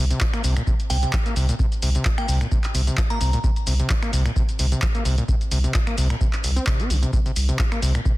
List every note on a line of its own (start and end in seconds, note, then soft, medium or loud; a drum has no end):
0.00 0.13 C2 loud
0.10 0.19 C3 medium
0.10 closed hi-hat medium
0.10 shaker soft
0.21 0.25 F3 loud
0.21 kick loud
0.21 clap loud
0.21 shaker soft
0.34 0.42 A#3 medium
0.34 finger snap medium
0.34 closed hi-hat soft
0.34 shaker soft
0.44 0.59 C2 loud
0.44 0.54 C3 loud
0.44 open hi-hat medium
0.44 shaker medium
0.57 0.62 A#2 loud
0.57 finger snap medium
0.57 closed hi-hat medium
0.57 shaker soft
0.67 0.74 C3 medium
0.67 kick loud
0.67 shaker soft
0.80 closed hi-hat medium
0.80 shaker soft
0.90 1.05 C2 medium
0.90 0.97 C3 loud
0.90 1.08 G5 medium
0.90 open hi-hat loud
0.90 shaker medium
1.03 1.11 C3 medium
1.03 closed hi-hat medium
1.03 shaker soft
1.13 1.17 F3 loud
1.13 finger snap medium
1.13 kick loud
1.13 clap loud
1.13 shaker soft
1.26 1.34 A#3 medium
1.26 closed hi-hat medium
1.26 shaker soft
1.36 1.51 C2 loud
1.36 1.47 C3 loud
1.36 open hi-hat medium
1.36 shaker medium
1.49 1.55 A#2 loud
1.49 closed hi-hat medium
1.49 shaker soft
1.59 1.66 C3 medium
1.59 kick loud
1.59 shaker soft
1.72 closed hi-hat soft
1.72 shaker soft
1.82 1.97 C2 loud
1.82 1.89 C3 loud
1.82 open hi-hat loud
1.82 shaker medium
1.95 2.04 C3 medium
1.95 closed hi-hat medium
1.95 shaker soft
2.05 2.10 F3 loud
2.05 kick loud
2.05 clap loud
2.05 shaker soft
2.18 2.27 A#3 medium
2.18 2.35 G5 medium
2.18 finger snap medium
2.18 closed hi-hat soft
2.18 shaker soft
2.28 2.44 C2 loud
2.28 2.39 C3 loud
2.28 open hi-hat medium
2.28 shaker medium
2.41 2.47 A#2 loud
2.41 finger snap medium
2.41 closed hi-hat medium
2.41 shaker soft
2.52 2.59 C3 medium
2.52 kick loud
2.52 shaker soft
2.64 clap soft
2.64 closed hi-hat medium
2.64 shaker soft
2.75 2.90 C2 medium
2.75 2.82 C3 loud
2.75 open hi-hat loud
2.75 shaker medium
2.87 2.96 C3 medium
2.87 closed hi-hat medium
2.87 shaker soft
2.97 3.02 F3 loud
2.97 kick loud
2.97 clap loud
2.97 shaker soft
3.10 3.19 A#3 medium
3.10 3.44 A#5 medium
3.10 closed hi-hat medium
3.10 shaker soft
3.21 3.36 C2 loud
3.21 3.31 C3 loud
3.21 open hi-hat medium
3.21 shaker medium
3.33 3.39 A#2 loud
3.33 closed hi-hat medium
3.33 shaker soft
3.44 3.51 C3 medium
3.44 kick loud
3.44 shaker soft
3.56 closed hi-hat soft
3.56 shaker soft
3.67 3.82 C2 loud
3.67 3.74 C3 loud
3.67 open hi-hat loud
3.67 shaker medium
3.79 3.88 C3 medium
3.79 closed hi-hat medium
3.79 shaker soft
3.90 3.94 F3 loud
3.90 kick loud
3.90 clap loud
3.90 shaker soft
4.02 4.11 A#3 medium
4.02 finger snap medium
4.02 closed hi-hat soft
4.02 shaker soft
4.13 4.28 C2 loud
4.13 4.23 C3 loud
4.13 open hi-hat loud
4.13 shaker medium
4.25 4.31 A#2 loud
4.25 finger snap medium
4.25 closed hi-hat medium
4.25 shaker soft
4.36 4.43 C3 medium
4.36 kick loud
4.36 shaker soft
4.49 closed hi-hat medium
4.49 shaker soft
4.59 4.74 C2 medium
4.59 4.66 C3 loud
4.59 open hi-hat loud
4.59 shaker medium
4.72 4.81 C3 medium
4.72 closed hi-hat medium
4.72 shaker soft
4.82 4.87 F3 loud
4.82 finger snap medium
4.82 kick loud
4.82 clap loud
4.82 shaker soft
4.95 5.04 A#3 medium
4.95 closed hi-hat soft
4.95 shaker soft
5.05 5.21 C2 loud
5.05 5.16 C3 loud
5.05 open hi-hat medium
5.05 shaker medium
5.18 5.24 A#2 loud
5.18 closed hi-hat medium
5.18 shaker soft
5.28 5.35 C3 medium
5.28 kick loud
5.28 shaker soft
5.41 closed hi-hat soft
5.41 shaker soft
5.51 5.67 C2 loud
5.51 5.58 C3 loud
5.51 open hi-hat loud
5.51 shaker medium
5.64 5.73 C3 medium
5.64 closed hi-hat medium
5.64 shaker soft
5.74 5.79 F3 loud
5.74 kick loud
5.74 clap loud
5.74 shaker soft
5.87 5.96 A#3 medium
5.87 finger snap medium
5.87 closed hi-hat soft
5.87 shaker soft
5.98 6.13 C2 loud
5.98 6.08 C3 loud
5.98 open hi-hat loud
5.98 shaker medium
6.10 6.16 A#2 loud
6.10 finger snap medium
6.10 closed hi-hat medium
6.10 shaker soft
6.21 6.28 C3 medium
6.21 kick loud
6.21 shaker soft
6.33 clap soft
6.33 closed hi-hat medium
6.33 shaker soft
6.44 6.51 C2 medium
6.44 6.59 C2 medium
6.44 open hi-hat loud
6.44 shaker medium
6.56 6.65 C4 medium
6.56 closed hi-hat medium
6.56 shaker soft
6.67 6.81 C3 medium
6.67 kick loud
6.67 clap loud
6.67 shaker soft
6.79 6.91 C4 medium
6.79 closed hi-hat soft
6.79 shaker soft
6.90 7.05 C2 loud
6.90 6.97 C3 medium
6.90 open hi-hat medium
6.90 shaker medium
7.03 7.11 C3 medium
7.03 closed hi-hat medium
7.03 shaker soft
7.13 7.20 C3 medium
7.13 kick loud
7.13 shaker soft
7.26 7.31 C3 loud
7.26 closed hi-hat soft
7.26 shaker soft
7.36 7.51 C2 loud
7.36 open hi-hat loud
7.36 shaker medium
7.49 7.57 C3 medium
7.49 closed hi-hat medium
7.49 shaker soft
7.59 7.63 F3 loud
7.59 kick loud
7.59 clap loud
7.59 shaker soft
7.72 7.81 A#3 medium
7.72 finger snap medium
7.72 closed hi-hat soft
7.72 shaker soft
7.82 7.97 C2 loud
7.82 7.93 C3 loud
7.82 open hi-hat loud
7.82 shaker medium
7.95 8.01 A#2 loud
7.95 finger snap medium
7.95 closed hi-hat medium
7.95 shaker soft
8.05 8.12 C3 medium
8.05 kick loud
8.05 shaker soft